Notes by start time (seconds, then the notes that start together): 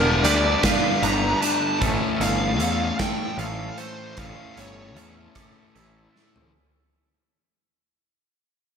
Already playing: E1 G2 D3 G3 B3 D4 G4 A#4
0.24 D2 A3 D4 G4 B4 D5, closed hi-hat
0.63 D4 G4 B4 F5, kick, snare, closed hi-hat
1.02 G1 A3 D4 G4 B4 A#5, closed hi-hat
1.42 D4 G4 B4 A5, closed hi-hat
1.80 A1 A2 E3 A3 C#4 A4, kick, closed hi-hat
1.84 E4
2.19 G1 A3 C#4 A4 F5, closed hi-hat
2.59 E2 A3 C#4 A4, closed hi-hat
2.98 A3 C#4 A4 G5, kick, snare, closed hi-hat
3.37 A1 A3 C#4 A4 F5, closed hi-hat
3.78 A3 C#4 A4 C5, closed hi-hat
4.17 A1 A2 E3 A3 C#4 E4 A4 F5, kick, closed hi-hat
4.56 G1 A3 C#4 E4 A4 C#5, closed hi-hat
4.95 E2 A3 C#4 E4 A4, closed hi-hat
5.34 A3 C#4 E4 A4, kick, cross-stick, closed hi-hat
5.73 A1 A3 C#4 E4 A4, closed hi-hat
6.13 A3 C#4 E4 A4, snare
6.36 floor tom